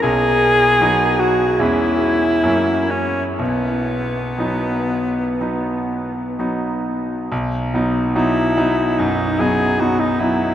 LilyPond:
<<
  \new Staff \with { instrumentName = "Alto saxophone" } { \time 4/4 \key b \major \tempo 4 = 72 gis'4. fis'8 e'4. cis'8 | b2. r4 | r4 e'4 dis'8 gis'8 fis'16 dis'16 e'8 | }
  \new Staff \with { instrumentName = "Grand piano" } { \time 4/4 \key b \major b,,4 <fis b dis'>4 <e, gis cis' e'>4 <fis, fis ais cis'>4 | b,,4 <fis b dis'>4 <fis b dis'>4 <fis b dis'>4 | b,,8 <fis b dis'>8 <fis b dis'>8 <fis b dis'>8 fis,8 <fis b dis'>8 <fis b dis'>8 <fis b dis'>8 | }
>>